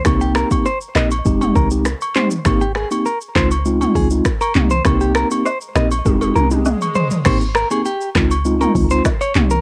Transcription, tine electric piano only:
X:1
M:4/4
L:1/16
Q:1/4=100
K:Dblyd
V:1 name="Tine electric piano"
[B,CEG]3 [B,CEG] z2 [B,CEG] z [A,CEG]3 [A,CEG] z2 [A,CEG] z | [B,CEG] z2 [B,CEG] z2 [A,CEF] z [A,CEF]3 [A,CEF] z2 [B,CEG] z | [B,CEG]3 [B,CEG] z2 [B,CEG] z [A,CEG]3 [A,CEG] z4 | [B,CEG] z2 [B,CEG] z2 [A,CEF] z [A,CEF]3 [A,CEF] z2 [B,CEG] z |]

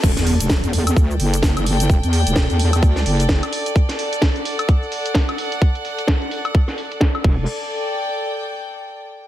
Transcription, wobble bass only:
X:1
M:4/4
L:1/16
Q:"Swing 16ths" 1/4=129
K:Em
V:1 name="Wobble bass" clef=bass
E,,, E,,2 E,,,2 E,,3 D,,2 F,,,3 F,,,3 | E,,, E,,2 E,,,2 E,,3 D,,2 F,,,3 z3 | z16 | z12 z2 E,,,2 |
z16 |]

